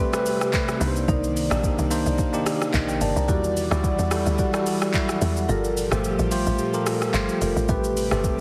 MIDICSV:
0, 0, Header, 1, 6, 480
1, 0, Start_track
1, 0, Tempo, 550459
1, 945, Time_signature, 4, 2, 24, 8
1, 7328, End_track
2, 0, Start_track
2, 0, Title_t, "Marimba"
2, 0, Program_c, 0, 12
2, 0, Note_on_c, 0, 60, 94
2, 0, Note_on_c, 0, 67, 89
2, 0, Note_on_c, 0, 71, 105
2, 324, Note_off_c, 0, 60, 0
2, 325, Note_off_c, 0, 67, 0
2, 327, Note_off_c, 0, 71, 0
2, 357, Note_on_c, 0, 60, 76
2, 359, Note_on_c, 0, 67, 75
2, 361, Note_on_c, 0, 71, 85
2, 433, Note_off_c, 0, 60, 0
2, 435, Note_off_c, 0, 67, 0
2, 436, Note_off_c, 0, 71, 0
2, 943, Note_on_c, 0, 63, 96
2, 946, Note_on_c, 0, 70, 86
2, 948, Note_on_c, 0, 74, 106
2, 1038, Note_off_c, 0, 63, 0
2, 1039, Note_off_c, 0, 70, 0
2, 1040, Note_off_c, 0, 74, 0
2, 1316, Note_on_c, 0, 63, 77
2, 1318, Note_on_c, 0, 70, 70
2, 1322, Note_on_c, 0, 74, 85
2, 1393, Note_off_c, 0, 63, 0
2, 1394, Note_off_c, 0, 70, 0
2, 1396, Note_off_c, 0, 74, 0
2, 2142, Note_on_c, 0, 63, 79
2, 2145, Note_on_c, 0, 70, 72
2, 2148, Note_on_c, 0, 74, 90
2, 2237, Note_off_c, 0, 63, 0
2, 2239, Note_off_c, 0, 70, 0
2, 2240, Note_off_c, 0, 74, 0
2, 2624, Note_on_c, 0, 63, 81
2, 2626, Note_on_c, 0, 70, 73
2, 2629, Note_on_c, 0, 74, 90
2, 2718, Note_off_c, 0, 63, 0
2, 2719, Note_off_c, 0, 70, 0
2, 2721, Note_off_c, 0, 74, 0
2, 2863, Note_on_c, 0, 66, 98
2, 2866, Note_on_c, 0, 67, 88
2, 2868, Note_on_c, 0, 74, 107
2, 3205, Note_off_c, 0, 66, 0
2, 3206, Note_off_c, 0, 67, 0
2, 3207, Note_off_c, 0, 74, 0
2, 3235, Note_on_c, 0, 66, 80
2, 3238, Note_on_c, 0, 67, 73
2, 3240, Note_on_c, 0, 74, 87
2, 3558, Note_off_c, 0, 66, 0
2, 3560, Note_off_c, 0, 67, 0
2, 3561, Note_off_c, 0, 74, 0
2, 3585, Note_on_c, 0, 66, 81
2, 3588, Note_on_c, 0, 67, 74
2, 3590, Note_on_c, 0, 74, 87
2, 3808, Note_off_c, 0, 66, 0
2, 3810, Note_off_c, 0, 67, 0
2, 3811, Note_off_c, 0, 74, 0
2, 3825, Note_on_c, 0, 66, 99
2, 3828, Note_on_c, 0, 67, 89
2, 3829, Note_on_c, 0, 74, 109
2, 4166, Note_off_c, 0, 66, 0
2, 4167, Note_off_c, 0, 67, 0
2, 4168, Note_off_c, 0, 74, 0
2, 4196, Note_on_c, 0, 66, 78
2, 4199, Note_on_c, 0, 67, 73
2, 4201, Note_on_c, 0, 74, 91
2, 4273, Note_off_c, 0, 66, 0
2, 4275, Note_off_c, 0, 67, 0
2, 4276, Note_off_c, 0, 74, 0
2, 4784, Note_on_c, 0, 65, 91
2, 4788, Note_on_c, 0, 69, 87
2, 4790, Note_on_c, 0, 70, 105
2, 4878, Note_off_c, 0, 65, 0
2, 4880, Note_off_c, 0, 69, 0
2, 4881, Note_off_c, 0, 70, 0
2, 5156, Note_on_c, 0, 65, 79
2, 5159, Note_on_c, 0, 69, 71
2, 5161, Note_on_c, 0, 70, 89
2, 5233, Note_off_c, 0, 65, 0
2, 5234, Note_off_c, 0, 69, 0
2, 5236, Note_off_c, 0, 70, 0
2, 5985, Note_on_c, 0, 65, 77
2, 5988, Note_on_c, 0, 69, 71
2, 5990, Note_on_c, 0, 70, 85
2, 6079, Note_off_c, 0, 65, 0
2, 6080, Note_off_c, 0, 69, 0
2, 6081, Note_off_c, 0, 70, 0
2, 6463, Note_on_c, 0, 65, 79
2, 6465, Note_on_c, 0, 69, 75
2, 6468, Note_on_c, 0, 70, 86
2, 6558, Note_off_c, 0, 65, 0
2, 6559, Note_off_c, 0, 69, 0
2, 6560, Note_off_c, 0, 70, 0
2, 6705, Note_on_c, 0, 60, 92
2, 6708, Note_on_c, 0, 67, 88
2, 6709, Note_on_c, 0, 71, 105
2, 7046, Note_off_c, 0, 60, 0
2, 7047, Note_off_c, 0, 67, 0
2, 7048, Note_off_c, 0, 71, 0
2, 7076, Note_on_c, 0, 60, 80
2, 7079, Note_on_c, 0, 67, 72
2, 7082, Note_on_c, 0, 71, 88
2, 7328, Note_off_c, 0, 60, 0
2, 7328, Note_off_c, 0, 67, 0
2, 7328, Note_off_c, 0, 71, 0
2, 7328, End_track
3, 0, Start_track
3, 0, Title_t, "Tine electric piano"
3, 0, Program_c, 1, 4
3, 0, Control_c, 1, 64, 127
3, 0, Note_on_c, 1, 57, 92
3, 0, Note_on_c, 1, 60, 76
3, 0, Note_on_c, 1, 67, 78
3, 0, Note_on_c, 1, 71, 98
3, 0, Note_on_c, 1, 74, 95
3, 111, Note_off_c, 1, 57, 0
3, 111, Note_on_c, 1, 57, 86
3, 115, Note_off_c, 1, 60, 0
3, 115, Note_on_c, 1, 60, 78
3, 117, Note_off_c, 1, 67, 0
3, 117, Note_on_c, 1, 67, 80
3, 122, Note_off_c, 1, 71, 0
3, 122, Note_on_c, 1, 71, 97
3, 397, Note_off_c, 1, 57, 0
3, 400, Note_off_c, 1, 60, 0
3, 401, Note_off_c, 1, 67, 0
3, 403, Note_off_c, 1, 71, 0
3, 459, Note_on_c, 1, 57, 84
3, 461, Note_on_c, 1, 60, 77
3, 467, Note_on_c, 1, 67, 76
3, 469, Note_on_c, 1, 71, 92
3, 696, Note_on_c, 1, 58, 94
3, 697, Note_off_c, 1, 71, 0
3, 701, Note_on_c, 1, 62, 84
3, 702, Note_off_c, 1, 57, 0
3, 704, Note_off_c, 1, 60, 0
3, 704, Note_on_c, 1, 63, 85
3, 706, Note_off_c, 1, 67, 0
3, 707, Note_on_c, 1, 71, 80
3, 715, Control_c, 1, 64, 0
3, 723, Note_off_c, 1, 74, 0
3, 764, Note_on_c, 1, 72, 105
3, 769, Note_off_c, 1, 71, 0
3, 873, Control_c, 1, 64, 127
3, 1181, Note_off_c, 1, 58, 0
3, 1183, Note_off_c, 1, 62, 0
3, 1185, Note_off_c, 1, 63, 0
3, 1215, Note_off_c, 1, 72, 0
3, 1310, Note_on_c, 1, 58, 90
3, 1315, Note_on_c, 1, 62, 82
3, 1317, Note_on_c, 1, 63, 84
3, 1321, Note_on_c, 1, 67, 98
3, 1597, Note_off_c, 1, 58, 0
3, 1599, Note_off_c, 1, 62, 0
3, 1601, Note_off_c, 1, 63, 0
3, 1603, Note_off_c, 1, 67, 0
3, 1659, Note_on_c, 1, 58, 90
3, 1663, Note_on_c, 1, 62, 81
3, 1666, Note_on_c, 1, 63, 81
3, 1669, Note_on_c, 1, 72, 98
3, 1955, Note_off_c, 1, 58, 0
3, 1957, Note_off_c, 1, 62, 0
3, 1959, Note_off_c, 1, 63, 0
3, 1960, Note_off_c, 1, 72, 0
3, 2030, Note_on_c, 1, 58, 90
3, 2034, Note_on_c, 1, 62, 80
3, 2037, Note_on_c, 1, 63, 81
3, 2042, Note_on_c, 1, 67, 100
3, 2317, Note_off_c, 1, 58, 0
3, 2319, Note_off_c, 1, 62, 0
3, 2320, Note_off_c, 1, 63, 0
3, 2323, Note_off_c, 1, 67, 0
3, 2384, Note_on_c, 1, 75, 66
3, 2510, Note_off_c, 1, 75, 0
3, 2516, Note_on_c, 1, 79, 78
3, 2619, Note_off_c, 1, 79, 0
3, 2625, Note_on_c, 1, 81, 77
3, 2751, Note_off_c, 1, 81, 0
3, 2758, Note_on_c, 1, 82, 66
3, 2858, Note_on_c, 1, 55, 82
3, 2863, Note_on_c, 1, 64, 73
3, 2867, Note_on_c, 1, 66, 77
3, 2871, Note_on_c, 1, 74, 92
3, 2875, Control_c, 1, 64, 0
3, 2986, Note_off_c, 1, 82, 0
3, 3035, Control_c, 1, 64, 127
3, 3155, Note_off_c, 1, 55, 0
3, 3157, Note_off_c, 1, 64, 0
3, 3159, Note_off_c, 1, 66, 0
3, 3161, Note_off_c, 1, 74, 0
3, 3233, Note_on_c, 1, 55, 91
3, 3238, Note_on_c, 1, 64, 82
3, 3240, Note_on_c, 1, 66, 85
3, 3245, Note_on_c, 1, 74, 100
3, 3519, Note_off_c, 1, 55, 0
3, 3521, Note_off_c, 1, 64, 0
3, 3522, Note_off_c, 1, 66, 0
3, 3524, Note_off_c, 1, 74, 0
3, 3585, Note_on_c, 1, 55, 86
3, 3589, Note_on_c, 1, 64, 79
3, 3592, Note_on_c, 1, 66, 80
3, 3596, Note_on_c, 1, 69, 98
3, 3878, Note_off_c, 1, 55, 0
3, 3880, Note_off_c, 1, 64, 0
3, 3882, Note_off_c, 1, 66, 0
3, 3883, Note_off_c, 1, 69, 0
3, 3956, Note_on_c, 1, 55, 92
3, 3959, Note_on_c, 1, 64, 79
3, 3965, Note_on_c, 1, 66, 81
3, 3967, Note_on_c, 1, 69, 98
3, 4240, Note_off_c, 1, 55, 0
3, 4242, Note_off_c, 1, 64, 0
3, 4245, Note_off_c, 1, 66, 0
3, 4246, Note_off_c, 1, 69, 0
3, 4304, Note_on_c, 1, 54, 68
3, 4307, Note_on_c, 1, 64, 75
3, 4310, Note_on_c, 1, 66, 78
3, 4315, Note_on_c, 1, 76, 92
3, 4359, Note_on_c, 1, 55, 85
3, 4367, Note_off_c, 1, 54, 0
3, 4700, Note_off_c, 1, 64, 0
3, 4701, Note_off_c, 1, 66, 0
3, 4704, Note_off_c, 1, 76, 0
3, 4726, Note_off_c, 1, 55, 0
3, 4785, Note_on_c, 1, 69, 80
3, 4788, Note_on_c, 1, 65, 77
3, 4792, Note_on_c, 1, 67, 74
3, 4794, Note_on_c, 1, 70, 87
3, 4797, Control_c, 1, 64, 0
3, 4951, Control_c, 1, 64, 127
3, 5078, Note_off_c, 1, 69, 0
3, 5080, Note_off_c, 1, 65, 0
3, 5082, Note_off_c, 1, 67, 0
3, 5083, Note_off_c, 1, 70, 0
3, 5154, Note_on_c, 1, 57, 94
3, 5156, Note_on_c, 1, 65, 82
3, 5161, Note_on_c, 1, 67, 83
3, 5165, Note_on_c, 1, 72, 94
3, 5439, Note_off_c, 1, 57, 0
3, 5440, Note_off_c, 1, 65, 0
3, 5442, Note_off_c, 1, 67, 0
3, 5444, Note_off_c, 1, 72, 0
3, 5501, Note_on_c, 1, 57, 87
3, 5506, Note_on_c, 1, 65, 83
3, 5510, Note_on_c, 1, 67, 80
3, 5512, Note_on_c, 1, 72, 96
3, 5796, Note_off_c, 1, 57, 0
3, 5798, Note_off_c, 1, 65, 0
3, 5801, Note_off_c, 1, 67, 0
3, 5802, Note_off_c, 1, 72, 0
3, 5873, Note_on_c, 1, 69, 85
3, 5876, Note_on_c, 1, 65, 83
3, 5880, Note_on_c, 1, 67, 78
3, 5883, Note_on_c, 1, 70, 95
3, 6158, Note_off_c, 1, 69, 0
3, 6160, Note_off_c, 1, 65, 0
3, 6162, Note_off_c, 1, 67, 0
3, 6164, Note_off_c, 1, 70, 0
3, 6219, Note_on_c, 1, 57, 82
3, 6223, Note_on_c, 1, 65, 74
3, 6227, Note_on_c, 1, 67, 77
3, 6230, Note_on_c, 1, 72, 91
3, 6616, Note_off_c, 1, 57, 0
3, 6618, Note_off_c, 1, 65, 0
3, 6620, Note_off_c, 1, 67, 0
3, 6621, Note_off_c, 1, 72, 0
3, 6703, Note_on_c, 1, 57, 85
3, 6706, Note_on_c, 1, 60, 74
3, 6709, Note_on_c, 1, 67, 78
3, 6713, Note_on_c, 1, 71, 90
3, 6718, Control_c, 1, 64, 0
3, 6877, Control_c, 1, 64, 127
3, 6997, Note_off_c, 1, 57, 0
3, 6998, Note_off_c, 1, 60, 0
3, 7000, Note_off_c, 1, 67, 0
3, 7002, Note_off_c, 1, 71, 0
3, 7076, Note_on_c, 1, 57, 91
3, 7080, Note_on_c, 1, 60, 83
3, 7083, Note_on_c, 1, 67, 82
3, 7087, Note_on_c, 1, 69, 99
3, 7328, Note_off_c, 1, 57, 0
3, 7328, Note_off_c, 1, 60, 0
3, 7328, Note_off_c, 1, 67, 0
3, 7328, Note_off_c, 1, 69, 0
3, 7328, End_track
4, 0, Start_track
4, 0, Title_t, "Analog synth pad"
4, 0, Program_c, 2, 89
4, 0, Note_on_c, 2, 48, 85
4, 0, Note_on_c, 2, 55, 76
4, 0, Note_on_c, 2, 67, 94
4, 0, Note_on_c, 2, 71, 76
4, 669, Note_off_c, 2, 55, 0
4, 670, Note_off_c, 2, 67, 0
4, 690, Note_off_c, 2, 71, 0
4, 706, Note_on_c, 2, 51, 98
4, 706, Note_on_c, 2, 74, 80
4, 708, Note_on_c, 2, 58, 80
4, 2832, Note_off_c, 2, 48, 0
4, 2844, Note_off_c, 2, 51, 0
4, 2845, Note_off_c, 2, 58, 0
4, 2863, Note_on_c, 2, 52, 84
4, 2864, Note_on_c, 2, 55, 79
4, 2865, Note_on_c, 2, 78, 97
4, 4751, Note_off_c, 2, 74, 0
4, 4765, Note_off_c, 2, 52, 0
4, 4765, Note_off_c, 2, 55, 0
4, 4766, Note_off_c, 2, 78, 0
4, 4787, Note_on_c, 2, 67, 90
4, 4788, Note_on_c, 2, 53, 83
4, 4788, Note_on_c, 2, 55, 77
4, 4789, Note_on_c, 2, 46, 78
4, 6687, Note_off_c, 2, 67, 0
4, 6688, Note_off_c, 2, 46, 0
4, 6688, Note_off_c, 2, 53, 0
4, 6708, Note_on_c, 2, 48, 86
4, 6709, Note_on_c, 2, 60, 78
4, 6709, Note_on_c, 2, 67, 94
4, 7328, Note_off_c, 2, 48, 0
4, 7328, Note_off_c, 2, 55, 0
4, 7328, Note_off_c, 2, 60, 0
4, 7328, Note_off_c, 2, 67, 0
4, 7328, End_track
5, 0, Start_track
5, 0, Title_t, "Log drum bass"
5, 0, Program_c, 3, 39
5, 706, Note_on_c, 3, 36, 103
5, 932, Note_off_c, 3, 36, 0
5, 945, Note_on_c, 3, 36, 117
5, 1296, Note_off_c, 3, 36, 0
5, 1318, Note_on_c, 3, 34, 96
5, 1544, Note_off_c, 3, 34, 0
5, 1559, Note_on_c, 3, 36, 95
5, 1784, Note_off_c, 3, 36, 0
5, 1799, Note_on_c, 3, 36, 89
5, 1900, Note_off_c, 3, 36, 0
5, 2389, Note_on_c, 3, 34, 102
5, 2613, Note_off_c, 3, 34, 0
5, 2626, Note_on_c, 3, 31, 97
5, 2750, Note_off_c, 3, 31, 0
5, 2758, Note_on_c, 3, 36, 94
5, 2865, Note_on_c, 3, 40, 117
5, 2878, Note_off_c, 3, 36, 0
5, 3215, Note_off_c, 3, 40, 0
5, 3238, Note_on_c, 3, 38, 96
5, 3464, Note_off_c, 3, 38, 0
5, 3478, Note_on_c, 3, 40, 92
5, 3704, Note_off_c, 3, 40, 0
5, 3719, Note_on_c, 3, 38, 87
5, 3820, Note_off_c, 3, 38, 0
5, 4548, Note_on_c, 3, 40, 98
5, 4773, Note_off_c, 3, 40, 0
5, 4787, Note_on_c, 3, 31, 107
5, 5137, Note_off_c, 3, 31, 0
5, 5160, Note_on_c, 3, 31, 97
5, 5385, Note_off_c, 3, 31, 0
5, 5399, Note_on_c, 3, 33, 96
5, 5624, Note_off_c, 3, 33, 0
5, 5640, Note_on_c, 3, 33, 93
5, 5741, Note_off_c, 3, 33, 0
5, 6224, Note_on_c, 3, 31, 99
5, 6349, Note_off_c, 3, 31, 0
5, 6465, Note_on_c, 3, 29, 95
5, 6590, Note_off_c, 3, 29, 0
5, 6596, Note_on_c, 3, 33, 102
5, 6698, Note_off_c, 3, 33, 0
5, 6705, Note_on_c, 3, 33, 112
5, 7055, Note_off_c, 3, 33, 0
5, 7077, Note_on_c, 3, 31, 92
5, 7303, Note_off_c, 3, 31, 0
5, 7328, End_track
6, 0, Start_track
6, 0, Title_t, "Drums"
6, 116, Note_on_c, 9, 82, 62
6, 117, Note_on_c, 9, 37, 104
6, 204, Note_off_c, 9, 37, 0
6, 204, Note_off_c, 9, 82, 0
6, 227, Note_on_c, 9, 46, 63
6, 227, Note_on_c, 9, 82, 112
6, 314, Note_off_c, 9, 46, 0
6, 314, Note_off_c, 9, 82, 0
6, 360, Note_on_c, 9, 37, 91
6, 360, Note_on_c, 9, 82, 52
6, 447, Note_off_c, 9, 82, 0
6, 448, Note_off_c, 9, 37, 0
6, 464, Note_on_c, 9, 82, 74
6, 467, Note_on_c, 9, 36, 90
6, 467, Note_on_c, 9, 39, 98
6, 551, Note_off_c, 9, 82, 0
6, 554, Note_off_c, 9, 36, 0
6, 554, Note_off_c, 9, 39, 0
6, 597, Note_on_c, 9, 82, 58
6, 598, Note_on_c, 9, 37, 91
6, 684, Note_off_c, 9, 82, 0
6, 685, Note_off_c, 9, 37, 0
6, 707, Note_on_c, 9, 46, 48
6, 707, Note_on_c, 9, 82, 82
6, 794, Note_off_c, 9, 46, 0
6, 794, Note_off_c, 9, 82, 0
6, 839, Note_on_c, 9, 82, 54
6, 926, Note_off_c, 9, 82, 0
6, 945, Note_on_c, 9, 36, 111
6, 946, Note_on_c, 9, 82, 66
6, 1032, Note_off_c, 9, 36, 0
6, 1033, Note_off_c, 9, 82, 0
6, 1080, Note_on_c, 9, 82, 60
6, 1167, Note_off_c, 9, 82, 0
6, 1193, Note_on_c, 9, 46, 55
6, 1193, Note_on_c, 9, 82, 93
6, 1280, Note_off_c, 9, 46, 0
6, 1280, Note_off_c, 9, 82, 0
6, 1319, Note_on_c, 9, 37, 99
6, 1322, Note_on_c, 9, 82, 60
6, 1406, Note_off_c, 9, 37, 0
6, 1409, Note_off_c, 9, 82, 0
6, 1426, Note_on_c, 9, 36, 107
6, 1429, Note_on_c, 9, 82, 77
6, 1513, Note_off_c, 9, 36, 0
6, 1516, Note_off_c, 9, 82, 0
6, 1557, Note_on_c, 9, 82, 59
6, 1645, Note_off_c, 9, 82, 0
6, 1667, Note_on_c, 9, 46, 61
6, 1667, Note_on_c, 9, 82, 106
6, 1754, Note_off_c, 9, 46, 0
6, 1754, Note_off_c, 9, 82, 0
6, 1798, Note_on_c, 9, 82, 56
6, 1885, Note_off_c, 9, 82, 0
6, 1903, Note_on_c, 9, 82, 70
6, 1906, Note_on_c, 9, 36, 106
6, 1991, Note_off_c, 9, 82, 0
6, 1993, Note_off_c, 9, 36, 0
6, 2038, Note_on_c, 9, 82, 63
6, 2125, Note_off_c, 9, 82, 0
6, 2148, Note_on_c, 9, 46, 63
6, 2148, Note_on_c, 9, 82, 113
6, 2149, Note_on_c, 9, 37, 99
6, 2235, Note_off_c, 9, 46, 0
6, 2235, Note_off_c, 9, 82, 0
6, 2236, Note_off_c, 9, 37, 0
6, 2281, Note_on_c, 9, 82, 52
6, 2282, Note_on_c, 9, 37, 92
6, 2368, Note_off_c, 9, 82, 0
6, 2369, Note_off_c, 9, 37, 0
6, 2386, Note_on_c, 9, 82, 75
6, 2388, Note_on_c, 9, 36, 94
6, 2389, Note_on_c, 9, 39, 100
6, 2473, Note_off_c, 9, 82, 0
6, 2475, Note_off_c, 9, 36, 0
6, 2476, Note_off_c, 9, 39, 0
6, 2517, Note_on_c, 9, 82, 57
6, 2604, Note_off_c, 9, 82, 0
6, 2626, Note_on_c, 9, 46, 51
6, 2626, Note_on_c, 9, 82, 84
6, 2713, Note_off_c, 9, 46, 0
6, 2713, Note_off_c, 9, 82, 0
6, 2760, Note_on_c, 9, 82, 53
6, 2848, Note_off_c, 9, 82, 0
6, 2865, Note_on_c, 9, 36, 112
6, 2865, Note_on_c, 9, 82, 70
6, 2953, Note_off_c, 9, 36, 0
6, 2953, Note_off_c, 9, 82, 0
6, 3000, Note_on_c, 9, 82, 61
6, 3087, Note_off_c, 9, 82, 0
6, 3112, Note_on_c, 9, 46, 51
6, 3112, Note_on_c, 9, 82, 90
6, 3200, Note_off_c, 9, 46, 0
6, 3200, Note_off_c, 9, 82, 0
6, 3238, Note_on_c, 9, 37, 99
6, 3241, Note_on_c, 9, 82, 60
6, 3325, Note_off_c, 9, 37, 0
6, 3329, Note_off_c, 9, 82, 0
6, 3347, Note_on_c, 9, 36, 104
6, 3349, Note_on_c, 9, 82, 79
6, 3434, Note_off_c, 9, 36, 0
6, 3437, Note_off_c, 9, 82, 0
6, 3478, Note_on_c, 9, 82, 58
6, 3565, Note_off_c, 9, 82, 0
6, 3585, Note_on_c, 9, 37, 97
6, 3586, Note_on_c, 9, 46, 61
6, 3586, Note_on_c, 9, 82, 101
6, 3673, Note_off_c, 9, 37, 0
6, 3673, Note_off_c, 9, 46, 0
6, 3673, Note_off_c, 9, 82, 0
6, 3717, Note_on_c, 9, 82, 58
6, 3804, Note_off_c, 9, 82, 0
6, 3823, Note_on_c, 9, 82, 72
6, 3826, Note_on_c, 9, 36, 101
6, 3911, Note_off_c, 9, 82, 0
6, 3913, Note_off_c, 9, 36, 0
6, 3957, Note_on_c, 9, 37, 107
6, 3957, Note_on_c, 9, 82, 61
6, 4044, Note_off_c, 9, 82, 0
6, 4045, Note_off_c, 9, 37, 0
6, 4067, Note_on_c, 9, 46, 64
6, 4067, Note_on_c, 9, 82, 105
6, 4155, Note_off_c, 9, 46, 0
6, 4155, Note_off_c, 9, 82, 0
6, 4201, Note_on_c, 9, 82, 49
6, 4202, Note_on_c, 9, 37, 97
6, 4288, Note_off_c, 9, 82, 0
6, 4289, Note_off_c, 9, 37, 0
6, 4304, Note_on_c, 9, 82, 77
6, 4307, Note_on_c, 9, 39, 101
6, 4308, Note_on_c, 9, 36, 92
6, 4391, Note_off_c, 9, 82, 0
6, 4395, Note_off_c, 9, 36, 0
6, 4395, Note_off_c, 9, 39, 0
6, 4438, Note_on_c, 9, 82, 58
6, 4439, Note_on_c, 9, 37, 90
6, 4525, Note_off_c, 9, 82, 0
6, 4526, Note_off_c, 9, 37, 0
6, 4548, Note_on_c, 9, 46, 51
6, 4548, Note_on_c, 9, 82, 86
6, 4635, Note_off_c, 9, 46, 0
6, 4635, Note_off_c, 9, 82, 0
6, 4680, Note_on_c, 9, 82, 56
6, 4767, Note_off_c, 9, 82, 0
6, 4787, Note_on_c, 9, 82, 69
6, 4875, Note_off_c, 9, 82, 0
6, 4922, Note_on_c, 9, 82, 57
6, 5009, Note_off_c, 9, 82, 0
6, 5034, Note_on_c, 9, 46, 53
6, 5034, Note_on_c, 9, 82, 88
6, 5121, Note_off_c, 9, 46, 0
6, 5121, Note_off_c, 9, 82, 0
6, 5159, Note_on_c, 9, 37, 100
6, 5162, Note_on_c, 9, 82, 61
6, 5246, Note_off_c, 9, 37, 0
6, 5249, Note_off_c, 9, 82, 0
6, 5269, Note_on_c, 9, 82, 78
6, 5356, Note_off_c, 9, 82, 0
6, 5398, Note_on_c, 9, 82, 58
6, 5485, Note_off_c, 9, 82, 0
6, 5507, Note_on_c, 9, 46, 62
6, 5507, Note_on_c, 9, 82, 101
6, 5594, Note_off_c, 9, 46, 0
6, 5594, Note_off_c, 9, 82, 0
6, 5637, Note_on_c, 9, 82, 58
6, 5725, Note_off_c, 9, 82, 0
6, 5742, Note_on_c, 9, 82, 71
6, 5830, Note_off_c, 9, 82, 0
6, 5876, Note_on_c, 9, 82, 62
6, 5963, Note_off_c, 9, 82, 0
6, 5986, Note_on_c, 9, 46, 66
6, 5986, Note_on_c, 9, 82, 109
6, 5987, Note_on_c, 9, 37, 102
6, 6074, Note_off_c, 9, 37, 0
6, 6074, Note_off_c, 9, 46, 0
6, 6074, Note_off_c, 9, 82, 0
6, 6120, Note_on_c, 9, 37, 91
6, 6120, Note_on_c, 9, 82, 54
6, 6207, Note_off_c, 9, 37, 0
6, 6207, Note_off_c, 9, 82, 0
6, 6225, Note_on_c, 9, 82, 73
6, 6228, Note_on_c, 9, 39, 96
6, 6312, Note_off_c, 9, 82, 0
6, 6316, Note_off_c, 9, 39, 0
6, 6356, Note_on_c, 9, 82, 55
6, 6443, Note_off_c, 9, 82, 0
6, 6467, Note_on_c, 9, 46, 50
6, 6467, Note_on_c, 9, 82, 84
6, 6554, Note_off_c, 9, 46, 0
6, 6554, Note_off_c, 9, 82, 0
6, 6598, Note_on_c, 9, 82, 53
6, 6686, Note_off_c, 9, 82, 0
6, 6702, Note_on_c, 9, 82, 67
6, 6705, Note_on_c, 9, 36, 109
6, 6790, Note_off_c, 9, 82, 0
6, 6792, Note_off_c, 9, 36, 0
6, 6838, Note_on_c, 9, 82, 59
6, 6925, Note_off_c, 9, 82, 0
6, 6950, Note_on_c, 9, 46, 54
6, 6950, Note_on_c, 9, 82, 89
6, 7037, Note_off_c, 9, 46, 0
6, 7037, Note_off_c, 9, 82, 0
6, 7075, Note_on_c, 9, 37, 101
6, 7078, Note_on_c, 9, 82, 58
6, 7162, Note_off_c, 9, 37, 0
6, 7166, Note_off_c, 9, 82, 0
6, 7185, Note_on_c, 9, 36, 103
6, 7186, Note_on_c, 9, 82, 81
6, 7272, Note_off_c, 9, 36, 0
6, 7274, Note_off_c, 9, 82, 0
6, 7328, End_track
0, 0, End_of_file